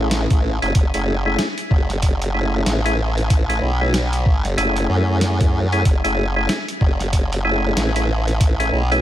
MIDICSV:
0, 0, Header, 1, 4, 480
1, 0, Start_track
1, 0, Key_signature, 3, "minor"
1, 0, Tempo, 638298
1, 562, Time_signature, 4, 2, 24, 8
1, 6779, End_track
2, 0, Start_track
2, 0, Title_t, "Tonewheel organ"
2, 0, Program_c, 0, 16
2, 0, Note_on_c, 0, 57, 88
2, 0, Note_on_c, 0, 61, 81
2, 0, Note_on_c, 0, 64, 79
2, 0, Note_on_c, 0, 68, 94
2, 432, Note_off_c, 0, 57, 0
2, 432, Note_off_c, 0, 61, 0
2, 432, Note_off_c, 0, 64, 0
2, 432, Note_off_c, 0, 68, 0
2, 467, Note_on_c, 0, 68, 90
2, 468, Note_on_c, 0, 57, 79
2, 468, Note_on_c, 0, 61, 74
2, 469, Note_on_c, 0, 64, 72
2, 557, Note_off_c, 0, 68, 0
2, 558, Note_off_c, 0, 57, 0
2, 558, Note_off_c, 0, 61, 0
2, 558, Note_off_c, 0, 64, 0
2, 707, Note_on_c, 0, 68, 88
2, 708, Note_on_c, 0, 57, 77
2, 708, Note_on_c, 0, 61, 76
2, 708, Note_on_c, 0, 64, 74
2, 877, Note_off_c, 0, 57, 0
2, 877, Note_off_c, 0, 61, 0
2, 877, Note_off_c, 0, 64, 0
2, 877, Note_off_c, 0, 68, 0
2, 946, Note_on_c, 0, 61, 74
2, 947, Note_on_c, 0, 57, 81
2, 947, Note_on_c, 0, 64, 72
2, 947, Note_on_c, 0, 68, 93
2, 1116, Note_off_c, 0, 61, 0
2, 1116, Note_off_c, 0, 68, 0
2, 1117, Note_off_c, 0, 57, 0
2, 1117, Note_off_c, 0, 64, 0
2, 1761, Note_on_c, 0, 61, 69
2, 1761, Note_on_c, 0, 68, 86
2, 1762, Note_on_c, 0, 57, 77
2, 1762, Note_on_c, 0, 64, 69
2, 2111, Note_off_c, 0, 57, 0
2, 2111, Note_off_c, 0, 61, 0
2, 2111, Note_off_c, 0, 64, 0
2, 2111, Note_off_c, 0, 68, 0
2, 2145, Note_on_c, 0, 57, 72
2, 2146, Note_on_c, 0, 64, 65
2, 2147, Note_on_c, 0, 61, 68
2, 2147, Note_on_c, 0, 68, 84
2, 2236, Note_off_c, 0, 57, 0
2, 2237, Note_off_c, 0, 61, 0
2, 2237, Note_off_c, 0, 64, 0
2, 2237, Note_off_c, 0, 68, 0
2, 2626, Note_on_c, 0, 61, 74
2, 2626, Note_on_c, 0, 68, 91
2, 2627, Note_on_c, 0, 57, 82
2, 2627, Note_on_c, 0, 64, 75
2, 2796, Note_off_c, 0, 57, 0
2, 2796, Note_off_c, 0, 61, 0
2, 2796, Note_off_c, 0, 68, 0
2, 2797, Note_off_c, 0, 64, 0
2, 2866, Note_on_c, 0, 57, 84
2, 2866, Note_on_c, 0, 64, 77
2, 2866, Note_on_c, 0, 68, 92
2, 2867, Note_on_c, 0, 61, 76
2, 2957, Note_off_c, 0, 57, 0
2, 2957, Note_off_c, 0, 61, 0
2, 2957, Note_off_c, 0, 64, 0
2, 2957, Note_off_c, 0, 68, 0
2, 3441, Note_on_c, 0, 61, 81
2, 3441, Note_on_c, 0, 64, 80
2, 3441, Note_on_c, 0, 68, 95
2, 3442, Note_on_c, 0, 57, 90
2, 4270, Note_off_c, 0, 61, 0
2, 4270, Note_off_c, 0, 64, 0
2, 4271, Note_off_c, 0, 57, 0
2, 4271, Note_off_c, 0, 68, 0
2, 4306, Note_on_c, 0, 61, 74
2, 4307, Note_on_c, 0, 64, 76
2, 4307, Note_on_c, 0, 68, 90
2, 4308, Note_on_c, 0, 57, 82
2, 4397, Note_off_c, 0, 61, 0
2, 4397, Note_off_c, 0, 64, 0
2, 4397, Note_off_c, 0, 68, 0
2, 4398, Note_off_c, 0, 57, 0
2, 4543, Note_on_c, 0, 61, 76
2, 4544, Note_on_c, 0, 57, 82
2, 4544, Note_on_c, 0, 64, 73
2, 4545, Note_on_c, 0, 68, 86
2, 4715, Note_off_c, 0, 57, 0
2, 4715, Note_off_c, 0, 61, 0
2, 4715, Note_off_c, 0, 64, 0
2, 4715, Note_off_c, 0, 68, 0
2, 4785, Note_on_c, 0, 57, 82
2, 4785, Note_on_c, 0, 61, 72
2, 4786, Note_on_c, 0, 64, 76
2, 4786, Note_on_c, 0, 68, 90
2, 4955, Note_off_c, 0, 57, 0
2, 4956, Note_off_c, 0, 61, 0
2, 4956, Note_off_c, 0, 64, 0
2, 4956, Note_off_c, 0, 68, 0
2, 5600, Note_on_c, 0, 57, 75
2, 5600, Note_on_c, 0, 64, 69
2, 5600, Note_on_c, 0, 68, 87
2, 5601, Note_on_c, 0, 61, 70
2, 5950, Note_off_c, 0, 57, 0
2, 5950, Note_off_c, 0, 64, 0
2, 5950, Note_off_c, 0, 68, 0
2, 5951, Note_off_c, 0, 61, 0
2, 5985, Note_on_c, 0, 57, 75
2, 5985, Note_on_c, 0, 64, 69
2, 5986, Note_on_c, 0, 61, 69
2, 5986, Note_on_c, 0, 68, 80
2, 6076, Note_off_c, 0, 57, 0
2, 6076, Note_off_c, 0, 64, 0
2, 6077, Note_off_c, 0, 61, 0
2, 6077, Note_off_c, 0, 68, 0
2, 6464, Note_on_c, 0, 64, 76
2, 6465, Note_on_c, 0, 57, 85
2, 6465, Note_on_c, 0, 61, 77
2, 6465, Note_on_c, 0, 68, 91
2, 6635, Note_off_c, 0, 57, 0
2, 6635, Note_off_c, 0, 61, 0
2, 6635, Note_off_c, 0, 64, 0
2, 6635, Note_off_c, 0, 68, 0
2, 6705, Note_on_c, 0, 61, 76
2, 6706, Note_on_c, 0, 57, 87
2, 6706, Note_on_c, 0, 64, 77
2, 6706, Note_on_c, 0, 68, 94
2, 6779, Note_off_c, 0, 57, 0
2, 6779, Note_off_c, 0, 61, 0
2, 6779, Note_off_c, 0, 64, 0
2, 6779, Note_off_c, 0, 68, 0
2, 6779, End_track
3, 0, Start_track
3, 0, Title_t, "Wobble bass"
3, 0, Program_c, 1, 39
3, 0, Note_on_c, 1, 33, 97
3, 205, Note_off_c, 1, 33, 0
3, 229, Note_on_c, 1, 33, 101
3, 444, Note_off_c, 1, 33, 0
3, 467, Note_on_c, 1, 30, 92
3, 547, Note_off_c, 1, 30, 0
3, 565, Note_on_c, 1, 30, 97
3, 684, Note_off_c, 1, 30, 0
3, 705, Note_on_c, 1, 30, 103
3, 1026, Note_off_c, 1, 30, 0
3, 1285, Note_on_c, 1, 30, 104
3, 1988, Note_off_c, 1, 30, 0
3, 2000, Note_on_c, 1, 33, 97
3, 2705, Note_off_c, 1, 33, 0
3, 2721, Note_on_c, 1, 35, 95
3, 3426, Note_off_c, 1, 35, 0
3, 3439, Note_on_c, 1, 30, 96
3, 3665, Note_off_c, 1, 30, 0
3, 3678, Note_on_c, 1, 42, 97
3, 4384, Note_off_c, 1, 42, 0
3, 4400, Note_on_c, 1, 30, 101
3, 4522, Note_off_c, 1, 30, 0
3, 4544, Note_on_c, 1, 30, 105
3, 4866, Note_off_c, 1, 30, 0
3, 5120, Note_on_c, 1, 30, 102
3, 5825, Note_off_c, 1, 30, 0
3, 5838, Note_on_c, 1, 33, 98
3, 6545, Note_off_c, 1, 33, 0
3, 6560, Note_on_c, 1, 35, 96
3, 6779, Note_off_c, 1, 35, 0
3, 6779, End_track
4, 0, Start_track
4, 0, Title_t, "Drums"
4, 84, Note_on_c, 9, 38, 122
4, 84, Note_on_c, 9, 42, 76
4, 159, Note_off_c, 9, 38, 0
4, 159, Note_off_c, 9, 42, 0
4, 229, Note_on_c, 9, 36, 110
4, 229, Note_on_c, 9, 42, 52
4, 304, Note_off_c, 9, 36, 0
4, 304, Note_off_c, 9, 42, 0
4, 469, Note_on_c, 9, 42, 38
4, 545, Note_off_c, 9, 42, 0
4, 563, Note_on_c, 9, 42, 80
4, 565, Note_on_c, 9, 36, 121
4, 638, Note_off_c, 9, 42, 0
4, 641, Note_off_c, 9, 36, 0
4, 707, Note_on_c, 9, 42, 50
4, 782, Note_off_c, 9, 42, 0
4, 1042, Note_on_c, 9, 38, 117
4, 1042, Note_on_c, 9, 42, 73
4, 1117, Note_off_c, 9, 38, 0
4, 1117, Note_off_c, 9, 42, 0
4, 1185, Note_on_c, 9, 42, 50
4, 1261, Note_off_c, 9, 42, 0
4, 1284, Note_on_c, 9, 36, 107
4, 1359, Note_off_c, 9, 36, 0
4, 1428, Note_on_c, 9, 40, 37
4, 1428, Note_on_c, 9, 42, 37
4, 1503, Note_off_c, 9, 40, 0
4, 1503, Note_off_c, 9, 42, 0
4, 1522, Note_on_c, 9, 42, 73
4, 1525, Note_on_c, 9, 36, 65
4, 1598, Note_off_c, 9, 42, 0
4, 1600, Note_off_c, 9, 36, 0
4, 1667, Note_on_c, 9, 42, 50
4, 1742, Note_off_c, 9, 42, 0
4, 2003, Note_on_c, 9, 38, 118
4, 2003, Note_on_c, 9, 42, 72
4, 2078, Note_off_c, 9, 38, 0
4, 2078, Note_off_c, 9, 42, 0
4, 2148, Note_on_c, 9, 42, 52
4, 2223, Note_off_c, 9, 42, 0
4, 2388, Note_on_c, 9, 42, 35
4, 2463, Note_off_c, 9, 42, 0
4, 2484, Note_on_c, 9, 36, 114
4, 2484, Note_on_c, 9, 42, 77
4, 2559, Note_off_c, 9, 36, 0
4, 2559, Note_off_c, 9, 42, 0
4, 2630, Note_on_c, 9, 42, 48
4, 2705, Note_off_c, 9, 42, 0
4, 2963, Note_on_c, 9, 38, 109
4, 2963, Note_on_c, 9, 42, 70
4, 3038, Note_off_c, 9, 38, 0
4, 3038, Note_off_c, 9, 42, 0
4, 3105, Note_on_c, 9, 42, 49
4, 3181, Note_off_c, 9, 42, 0
4, 3203, Note_on_c, 9, 36, 103
4, 3279, Note_off_c, 9, 36, 0
4, 3345, Note_on_c, 9, 40, 37
4, 3345, Note_on_c, 9, 42, 35
4, 3420, Note_off_c, 9, 40, 0
4, 3420, Note_off_c, 9, 42, 0
4, 3444, Note_on_c, 9, 42, 78
4, 3519, Note_off_c, 9, 42, 0
4, 3583, Note_on_c, 9, 42, 53
4, 3659, Note_off_c, 9, 42, 0
4, 3920, Note_on_c, 9, 38, 109
4, 3920, Note_on_c, 9, 42, 76
4, 3995, Note_off_c, 9, 38, 0
4, 3995, Note_off_c, 9, 42, 0
4, 4065, Note_on_c, 9, 36, 109
4, 4065, Note_on_c, 9, 42, 50
4, 4141, Note_off_c, 9, 36, 0
4, 4141, Note_off_c, 9, 42, 0
4, 4305, Note_on_c, 9, 42, 36
4, 4380, Note_off_c, 9, 42, 0
4, 4402, Note_on_c, 9, 36, 117
4, 4402, Note_on_c, 9, 42, 78
4, 4477, Note_off_c, 9, 36, 0
4, 4477, Note_off_c, 9, 42, 0
4, 4546, Note_on_c, 9, 42, 54
4, 4622, Note_off_c, 9, 42, 0
4, 4881, Note_on_c, 9, 38, 114
4, 4881, Note_on_c, 9, 42, 75
4, 4956, Note_off_c, 9, 38, 0
4, 4956, Note_off_c, 9, 42, 0
4, 5027, Note_on_c, 9, 42, 50
4, 5102, Note_off_c, 9, 42, 0
4, 5121, Note_on_c, 9, 36, 96
4, 5196, Note_off_c, 9, 36, 0
4, 5267, Note_on_c, 9, 40, 41
4, 5267, Note_on_c, 9, 42, 38
4, 5343, Note_off_c, 9, 40, 0
4, 5343, Note_off_c, 9, 42, 0
4, 5361, Note_on_c, 9, 36, 59
4, 5361, Note_on_c, 9, 42, 77
4, 5436, Note_off_c, 9, 36, 0
4, 5437, Note_off_c, 9, 42, 0
4, 5509, Note_on_c, 9, 42, 53
4, 5584, Note_off_c, 9, 42, 0
4, 5842, Note_on_c, 9, 38, 115
4, 5842, Note_on_c, 9, 42, 75
4, 5917, Note_off_c, 9, 38, 0
4, 5917, Note_off_c, 9, 42, 0
4, 5985, Note_on_c, 9, 42, 54
4, 6060, Note_off_c, 9, 42, 0
4, 6225, Note_on_c, 9, 42, 35
4, 6300, Note_off_c, 9, 42, 0
4, 6321, Note_on_c, 9, 36, 112
4, 6322, Note_on_c, 9, 42, 84
4, 6396, Note_off_c, 9, 36, 0
4, 6397, Note_off_c, 9, 42, 0
4, 6468, Note_on_c, 9, 42, 55
4, 6543, Note_off_c, 9, 42, 0
4, 6707, Note_on_c, 9, 42, 38
4, 6779, Note_off_c, 9, 42, 0
4, 6779, End_track
0, 0, End_of_file